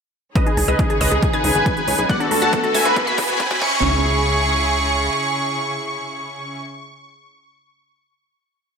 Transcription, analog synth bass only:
0.57 0.64 C#2 medium
0.68 0.75 C#2 medium
1.01 1.08 C#2 medium
1.12 1.18 C#2 medium
1.44 1.51 C#2 medium
1.55 1.62 G#1 medium
1.88 1.95 C#2 medium
1.99 2.05 B1 medium
2.31 2.38 D2 loud
2.42 2.49 D2 medium
2.75 2.81 D2 loud
2.86 2.92 D2 medium
3.18 3.25 E2 loud
3.29 3.36 E1 medium
3.62 5.10 C#2 medium

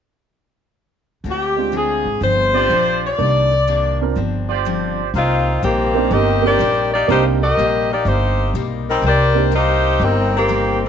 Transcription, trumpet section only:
2.55 3.16 F4 medium
2.55 3.16 G4 medium
2.55 3.16 C5 medium
2.55 3.16 D5 medium
4.49 5.11 F4 medium
4.49 5.11 G4 medium
4.49 5.11 C5 medium
4.49 5.11 D5 medium

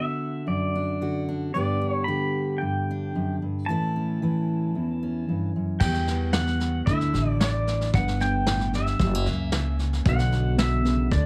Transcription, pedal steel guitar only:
0.00 0.48 E5 medium
0.48 1.23 D5 medium
1.54 1.90 D5 medium
1.90 2.03 C#5 medium
2.04 2.55 B5 medium
2.58 3.35 G5 medium
3.66 5.50 A5 medium
5.80 6.33 G5 medium
6.33 6.83 F#5 medium
6.86 7.30 E5 medium
7.30 7.40 D5 medium
7.40 7.90 D5 medium
7.95 8.19 F#5 medium
8.21 8.75 G5 medium
8.75 9.76 E5 medium
10.09 10.57 F#5 medium
10.59 11.13 E5 medium
11.12 11.26 D5 medium

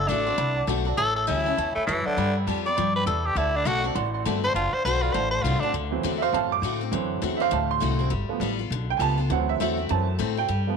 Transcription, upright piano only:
0.08 0.19 D5 medium
0.08 0.20 A5 medium
0.26 0.33 D5 medium
0.26 0.34 F#5 medium
0.26 0.34 C6 medium
0.37 0.49 D5 medium
0.37 0.49 F#5 medium
0.37 0.49 B5 loud
0.56 0.63 D5 medium
0.56 0.63 F#5 medium
0.56 0.64 A5 loud
0.67 0.79 D5 medium
0.67 0.79 F#5 medium
0.67 0.79 A5 loud
0.86 0.93 D5 medium
0.86 0.93 F#5 medium
0.86 0.93 A5 medium
0.97 1.09 C#5 loud
0.97 1.09 E5 medium
0.97 1.09 A5 loud
1.15 1.23 C#5 medium
1.15 1.23 E5 medium
1.15 1.23 A5 medium
1.28 1.39 E5 medium
1.28 1.39 A5 medium
1.46 1.53 C#5 medium
1.46 1.53 E5 medium
1.46 1.53 A5 loud
1.57 1.68 C#5 loud
1.57 1.68 E5 medium
1.57 1.68 A5 loud
1.75 1.82 C#5 medium
1.75 1.83 E5 medium
1.75 1.83 B5 medium
1.88 1.98 C#5 medium
1.88 1.98 E5 medium
1.88 1.99 A5 medium
2.06 2.13 C#5 medium
2.06 2.13 E5 medium
2.06 2.13 A5 medium
2.17 2.28 D5 loud
2.17 2.28 G5 medium
2.17 2.28 B5 loud
2.37 2.43 D5 medium
2.37 2.43 G5 medium
2.37 2.43 B5 medium
2.47 2.58 D5 medium
2.47 2.58 G5 medium
2.47 2.58 A5 medium
2.65 2.72 D5 medium
2.65 2.72 G5 medium
2.65 2.73 B5 medium
2.75 2.87 D5 loud
2.75 2.87 G5 medium
2.75 2.88 B5 loud
2.94 3.01 D5 medium
2.94 3.02 G5 medium
2.94 3.02 B5 medium
3.07 3.17 D5 medium
3.07 3.18 G5 medium
3.07 3.18 B5 medium
3.24 3.31 D5 medium
3.24 3.31 G5 medium
3.24 3.32 A5 medium
3.37 3.47 D5 loud
3.37 3.47 F#5 medium
3.37 3.48 A5 loud
3.54 3.61 D5 medium
3.54 3.61 F#5 medium
3.54 3.62 B5 medium
3.67 3.77 A5 medium
3.85 3.91 D5 medium
3.85 3.91 F#5 medium
3.85 3.92 A5 medium
3.95 4.06 D5 loud
3.95 4.06 F#5 loud
3.95 4.06 C6 loud
4.14 4.21 D5 medium
4.14 4.21 F#5 medium
4.14 4.21 C6 loud
4.25 4.36 D5 medium
4.25 4.36 F#5 medium
4.25 4.36 A5 medium
4.44 4.51 F#5 medium
4.44 4.51 A5 medium
4.55 4.66 D5 loud
4.55 4.66 F#5 loud
4.55 4.66 A5 loud
4.73 4.80 D5 medium
4.73 4.80 F#5 medium
4.73 4.80 C6 medium
4.85 4.96 F#5 medium
4.85 4.96 A5 medium
5.02 5.10 D5 medium
5.02 5.10 F#5 medium
5.02 5.10 B5 medium
5.14 5.25 D5 medium
5.14 5.25 F#5 medium
5.14 5.26 A5 loud
5.33 5.40 A5 medium
5.44 5.55 D5 medium
5.44 5.55 F#5 medium
5.44 5.55 C6 medium
5.62 5.69 D5 medium
5.62 5.70 F#5 medium
5.62 5.70 A5 medium
5.91 6.09 E3 medium
5.91 6.10 F#3 medium
5.91 6.10 C4 medium
6.18 6.20 E5 medium
6.22 6.33 C5 medium
6.22 6.32 F5 loud
6.33 6.50 E3 soft
6.33 6.50 F#3 soft
6.33 6.50 C4 medium
6.33 6.50 F5 medium
6.33 6.51 A5 medium
6.52 6.81 D6 medium
6.91 8.07 E3 medium
6.91 8.07 F#3 medium
6.91 8.08 C4 medium
7.37 7.52 C5 medium
7.37 7.39 E5 medium
7.42 7.51 F5 loud
7.53 7.69 F5 medium
7.53 7.70 A5 medium
7.71 8.00 C6 loud
8.29 8.47 F3 medium
8.29 8.48 A3 medium
8.29 8.48 B3 medium
8.90 9.01 G5 loud
8.97 9.17 F3 soft
8.97 9.17 A3 soft
8.97 9.17 B3 medium
8.97 9.00 G#5 medium
9.02 9.30 A5 loud
9.30 9.76 E3 medium
9.30 9.76 F#3 medium
9.30 9.76 C4 medium
9.30 9.49 F#5 medium
9.49 9.59 E5 medium
9.61 9.89 E5 medium
9.89 10.06 E3 medium
9.89 10.06 F#3 soft
9.89 10.06 C4 medium
9.89 10.37 A5 medium
10.38 10.77 G5 loud
10.67 10.77 F3 medium
10.67 10.77 A3 medium
10.67 10.77 B3 medium

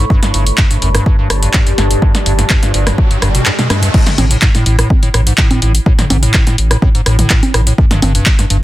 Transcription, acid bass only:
0.10 0.21 G2 loud
0.23 0.32 G2 medium
0.34 0.45 G2 medium
0.58 0.65 G2 medium
0.71 0.77 G2 medium
0.82 0.89 F#2 medium
0.95 1.04 G2 loud
1.06 1.17 G2 medium
1.19 1.28 G2 medium
1.43 1.49 G2 medium
1.54 1.61 G2 medium
1.67 1.73 F#2 medium
1.78 1.89 G2 loud
1.91 2.00 G2 medium
2.02 2.13 G2 medium
2.26 2.33 G2 medium
2.39 2.45 G2 medium
2.50 2.57 F#2 medium
2.63 2.72 G2 loud
2.74 2.85 G2 medium
2.87 2.96 G2 medium
3.11 3.17 G2 medium
3.22 3.29 G2 medium
3.35 3.44 B2 medium
3.46 3.50 G2 medium
3.59 3.68 B2 medium
3.70 3.81 G2 medium
3.83 3.89 G2 loud
3.94 4.05 A2 medium
4.18 4.25 A2 medium
4.31 4.37 A2 medium
4.42 4.49 G#2 medium
4.55 4.64 A2 loud
4.66 4.77 A2 medium
4.79 4.88 A2 medium
5.03 5.09 A2 medium
5.14 5.21 A2 medium
5.27 5.33 G#2 medium
5.38 5.49 A2 loud
5.51 5.60 A2 medium
5.62 5.73 A2 medium
5.86 5.93 A2 medium
5.98 6.05 A2 medium
6.10 6.17 G#2 medium
6.23 6.32 A2 loud
6.47 6.56 A2 medium
6.71 6.77 A2 medium
6.82 6.89 A2 medium
6.95 7.01 G#2 medium
7.06 7.17 A2 loud
7.19 7.28 A2 medium
7.30 7.41 A2 medium
7.54 7.61 A2 medium
7.67 7.73 A2 medium
7.78 7.85 F#2 medium
7.91 8.00 G2 loud
8.02 8.13 G2 medium
8.15 8.24 G2 medium
8.39 8.45 G2 medium
8.50 8.57 G2 medium

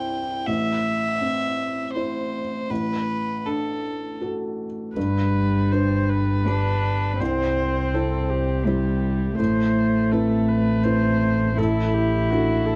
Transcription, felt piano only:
0.00 0.45 C2 soft
0.00 0.19 C4 soft
0.00 0.44 E4 soft
0.00 0.44 C5 soft
0.47 2.66 A1 soft
1.21 2.40 C4 soft
1.95 2.66 E4 soft
1.95 2.67 C5 soft
2.70 4.92 A1 soft
3.46 4.66 D4 soft
4.21 4.92 F#4 soft
4.21 4.93 A4 soft
4.97 5.69 G2 soft
5.72 6.43 D4 soft
5.72 6.43 G4 soft
5.72 6.43 B4 soft
6.46 7.16 D4 soft
6.46 7.16 G4 soft
6.46 7.17 B4 soft
7.21 7.91 C2 soft
7.94 8.62 C4 soft
7.94 8.63 E4 soft
7.94 8.63 C5 soft
8.67 9.35 C4 soft
8.67 9.35 E4 soft
8.67 9.35 C5 soft
9.39 10.10 A2 soft
10.12 10.80 C4 soft
10.12 10.80 E4 soft
10.12 10.80 B4 soft
10.85 11.54 C4 soft
10.85 11.54 E4 soft
10.85 11.54 B4 soft
11.58 12.28 A2 medium
12.31 12.76 D4 soft
12.31 12.76 F#4 soft
12.31 12.76 A4 soft

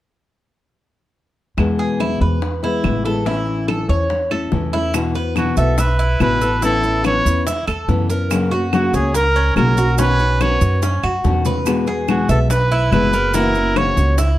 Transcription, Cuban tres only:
1.79 1.99 G#4 medium
2.00 2.20 E4 medium
2.21 2.62 B4 medium
2.64 3.04 E4 medium
3.05 3.26 A4 medium
3.27 3.67 E4 medium
3.68 3.89 A4 medium
3.89 4.30 C#5 medium
4.31 4.72 A4 medium
4.73 4.94 E4 medium
5.15 5.56 B4 medium
5.57 5.77 E5 medium
5.78 5.99 E5 medium
5.99 6.40 E4 medium
6.41 6.62 A4 medium
6.62 7.03 E4 medium
7.04 7.45 B4 medium
7.47 7.67 E4 medium
7.67 8.08 A4 medium
8.10 8.50 A#4 medium
8.51 8.92 F#4 medium
8.94 9.14 C#5 medium
9.15 9.35 A#4 medium
9.36 9.77 C#4 medium
9.78 9.98 F#4 medium
9.98 10.39 C#4 medium
10.41 10.81 B4 medium
10.83 11.03 C#4 medium
11.04 11.44 F#4 medium
11.46 11.87 B4 medium
11.87 12.28 G#4 medium
12.29 12.50 E5 medium
12.50 12.71 B4 medium
12.72 13.12 E4 medium
13.14 13.34 A#4 medium
13.34 13.75 E4 medium
13.77 14.17 C#5 medium
14.18 14.38 E4 medium

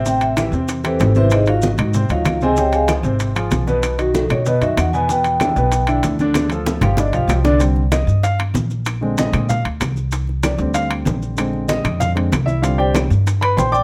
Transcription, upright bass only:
0.00 0.47 A1 medium
0.52 0.96 E2 medium
1.00 1.73 G#1 loud
1.78 2.07 G#2 loud
2.09 2.24 D2 medium
2.25 2.98 C#2 medium
3.03 3.48 G#1 medium
3.51 4.24 B1 medium
4.30 4.60 B2 medium
4.61 4.76 F#2 medium
4.77 5.51 E2 medium
5.56 6.00 B1 loud
6.03 6.77 D2 medium
6.81 7.11 G1 loud
7.12 7.27 B1 medium
7.28 8.02 C2 medium
8.07 8.51 G2 medium
8.54 9.28 A#1 medium
9.33 9.63 A#2 loud
9.65 9.80 D2 medium
9.80 10.54 C2 medium
10.58 11.03 D2 loud
11.05 11.79 A#1 medium
11.84 12.29 F2 loud
12.32 13.05 C2 medium
13.10 13.54 G2 medium
13.57 13.83 A#1 medium

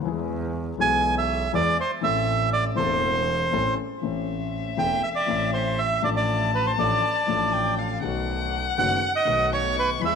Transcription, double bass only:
0.05 0.76 E2 medium
0.79 1.50 B1 medium
1.54 1.74 E2 medium
2.03 2.74 A1 medium
2.77 3.50 E1 medium
3.53 3.75 A1 medium
4.04 4.75 A1 medium
4.79 5.00 E1 medium
5.29 6.00 A1 medium
6.04 6.75 A1 medium
6.79 7.00 A1 medium
7.29 8.00 A1 medium
8.03 8.74 B1 medium
8.78 8.98 F#1 medium
9.27 9.98 B1 medium
10.02 10.15 E2 medium

